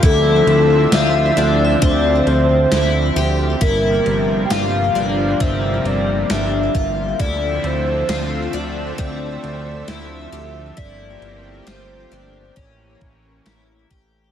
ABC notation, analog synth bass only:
X:1
M:4/4
L:1/8
Q:1/4=67
K:Dm
V:1 name="Analog synth bass" clef=bass
D,, D,, D,, D,, D,, D,, D,, D,, | G,,, G,,, G,,, G,,, G,,, G,,, G,,, G,,, | D,, D,, D,, D,, D,, D,, D,, D,, | G,,, G,,, G,,, G,,, A,,, A,,, A,,, A,,, |]